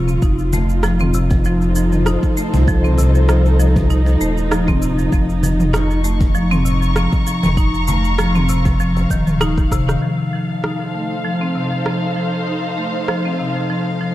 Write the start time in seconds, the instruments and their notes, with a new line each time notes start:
Already playing: sub bass D#1, string section F4 A#5 C#6
0.08 cabasa
0.22 sub bass F1, marimba D#4, kick, cabasa
0.39 cabasa
0.51 marimba A3, string section D#4, cajon bass, cabasa
0.69 cabasa
0.83 marimba F3, cross-stick, cajon slap, cabasa
0.99 marimba C4, mid tom, cabasa
1.14 marimba C3, cabasa
1.31 string section C5, cajon bass, kick, cajon slap, cabasa
1.44 marimba F3, cabasa
1.49 string section A4
1.62 cabasa
1.75 marimba F3, cabasa
1.92 mid tom, cabasa
2.06 marimba D#4, cross-stick, cabasa
2.23 kick, cabasa
2.37 marimba A3, cabasa
2.54 sub bass C2, cajon bass, cabasa
2.68 marimba F3, kick, cabasa
2.84 marimba C4, mid tom, cabasa
2.98 marimba C3, cajon bass, cabasa
3.15 cabasa
3.28 marimba F3, cross-stick, cajon slap, cabasa
3.46 cabasa
3.59 marimba F3, cabasa
3.76 kick, cajon bass, cajon slap, mid tom, cabasa
3.90 marimba D#4, cabasa
4.06 cajon slap, cabasa
4.21 sub bass D#1, marimba A3, cabasa
4.38 cabasa
4.51 marimba F3, cross-stick, cabasa
4.68 marimba C4, kick, cross-stick, mid tom, cabasa
4.82 marimba C3, cabasa
4.99 cabasa
5.12 sub bass F1, marimba F3, kick, cabasa
5.29 cabasa
5.43 marimba F3, cajon bass, cabasa
5.60 mid tom, cabasa
5.73 marimba D#4, string section C#6, cross-stick, cajon slap, cabasa
5.91 cabasa
6.04 marimba A3, cabasa
6.21 string section A#5, cajon bass, kick, cajon slap, cabasa
6.35 marimba F3, cabasa
6.51 marimba C4, mid tom, cabasa
6.65 marimba C3, cabasa
6.82 cabasa
6.96 marimba F3, cross-stick, cabasa
7.13 kick, cabasa
7.27 marimba F3, cabasa
7.43 sub bass F1, cajon bass, mid tom, cabasa
7.57 marimba D#4, kick, cabasa
7.74 cabasa
7.80 string section F5
7.88 marimba A3, cajon bass, cabasa
8.05 cabasa
8.18 marimba F3, cross-stick, cajon slap, cabasa
8.35 marimba C4, mid tom, cabasa
8.49 marimba C3, cabasa
8.65 cajon bass, kick, cajon slap, cabasa
8.80 marimba F3, cabasa
8.97 cajon slap, cabasa
9.10 sub bass D#1, marimba D#3, kick, cajon slap, cabasa
9.27 mid tom, cabasa
9.41 marimba D#4, cross-stick, cabasa
9.58 kick, cross-stick, cabasa
9.71 marimba C3, kick, cross-stick, cabasa
9.89 marimba D#3, cross-stick, cabasa
10.02 marimba F3
10.09 string section D#4
10.19 string section A4
10.33 marimba F3
10.64 marimba D#4, cross-stick
10.79 string section C5
10.94 marimba A3
11.25 marimba F3
11.41 marimba C4
11.55 marimba C3
11.86 marimba F3, cross-stick
12.16 marimba F3
12.47 marimba D#4
12.78 marimba A3
13.08 marimba F3, cross-stick
13.25 marimba C4
13.39 marimba C3
13.70 marimba F3
14.01 marimba F3